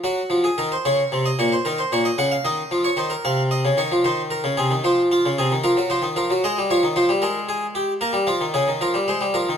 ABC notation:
X:1
M:12/8
L:1/16
Q:3/8=75
K:Gblyd
V:1 name="Harpsichord"
G3 A B c d3 e d c B c d e g f e3 d c B | f2 e2 d2 c2 B2 A2 c2 F2 A2 B2 c2 B2 | [K:Ab] e2 d2 c2 B2 A2 G2 B2 F2 A2 B2 c2 B2 |]
V:2 name="Harpsichord" clef=bass
G,2 F,2 E,2 D,2 C,2 B,,2 E,2 B,,2 D,2 E,2 F,2 E,2 | C,3 D, E, F, E,3 D, C, E, F,3 D, C, E, F, G, F, E, F, G, | [K:Ab] A, G, F, E, F, G, A,6 B, G, F, E, D, E, F, G, A, G, F, E, |]